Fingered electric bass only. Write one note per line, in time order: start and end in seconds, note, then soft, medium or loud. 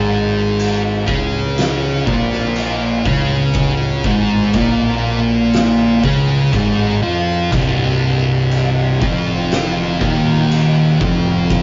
0.00 1.04 G#1 medium
1.09 2.03 C#2 loud
2.08 3.02 A#1 medium
3.06 4.01 C#2 loud
4.05 4.51 G#1 medium
4.54 5.99 A#1 medium
6.03 6.50 C#2 loud
6.53 7.00 G#1 medium
7.03 7.49 F2 loud
7.52 8.97 C1 medium
9.02 9.97 F1 medium
10.01 10.96 D#1 loud
11.01 11.63 F1 loud